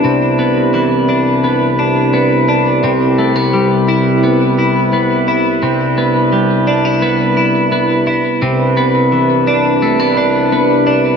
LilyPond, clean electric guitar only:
\new Staff \with { instrumentName = "Clean electric guitar" } { \time 4/4 \key c \major \tempo 4 = 86 <c e b d'>8 b8 e8 d'8 b8 d'8 b8 d'8 | c8 a16 b16 g8 e'8 b8 e'8 b8 e'8 | c8 b8 g8 d'16 e'16 b8 e'8 b8 e'8 | c8 b8 e8 d'8 a16 b16 d'8 b8 d'8 | }